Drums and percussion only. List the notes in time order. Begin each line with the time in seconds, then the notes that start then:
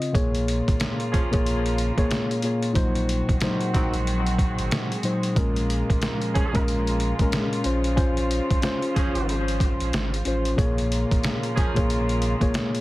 0.02 closed hi-hat
0.15 kick, closed hi-hat
0.35 closed hi-hat
0.48 closed hi-hat
0.68 kick, closed hi-hat
0.80 snare, closed hi-hat
1.00 closed hi-hat
1.14 kick, closed hi-hat
1.33 kick, closed hi-hat
1.46 closed hi-hat
1.66 closed hi-hat
1.78 closed hi-hat
1.98 kick, closed hi-hat
2.11 snare, closed hi-hat
2.31 closed hi-hat
2.42 closed hi-hat
2.63 closed hi-hat
2.75 kick, closed hi-hat
2.95 closed hi-hat
3.09 closed hi-hat
3.29 kick, closed hi-hat
3.41 snare, closed hi-hat
3.61 closed hi-hat
3.75 kick, snare, closed hi-hat
3.94 closed hi-hat
4.07 closed hi-hat
4.26 closed hi-hat
4.38 kick, closed hi-hat
4.59 closed hi-hat
4.71 snare, closed hi-hat
4.92 closed hi-hat
5.03 closed hi-hat
5.23 closed hi-hat
5.36 kick, closed hi-hat
5.56 closed hi-hat
5.70 closed hi-hat
5.90 kick, closed hi-hat
6.02 snare, closed hi-hat
6.22 closed hi-hat
6.35 kick, closed hi-hat
6.55 kick, closed hi-hat
6.68 closed hi-hat
6.87 closed hi-hat
7.00 closed hi-hat
7.19 kick, closed hi-hat
7.32 snare, closed hi-hat
7.53 closed hi-hat
7.64 closed hi-hat
7.84 closed hi-hat
7.97 kick, closed hi-hat
8.17 closed hi-hat
8.31 closed hi-hat
8.51 kick, closed hi-hat
8.62 snare, closed hi-hat
8.82 closed hi-hat
8.96 kick, snare, closed hi-hat
9.15 closed hi-hat
9.29 closed hi-hat
9.48 closed hi-hat
9.60 kick, closed hi-hat
9.80 closed hi-hat
9.93 snare, closed hi-hat
10.14 closed hi-hat
10.25 closed hi-hat
10.45 closed hi-hat
10.58 kick, closed hi-hat
10.78 closed hi-hat
10.92 closed hi-hat
11.11 kick, closed hi-hat
11.23 snare, closed hi-hat
11.43 closed hi-hat
11.57 kick, closed hi-hat
11.76 kick, closed hi-hat
11.90 closed hi-hat
12.09 closed hi-hat
12.22 closed hi-hat
12.41 kick, closed hi-hat
12.54 snare, closed hi-hat
12.75 closed hi-hat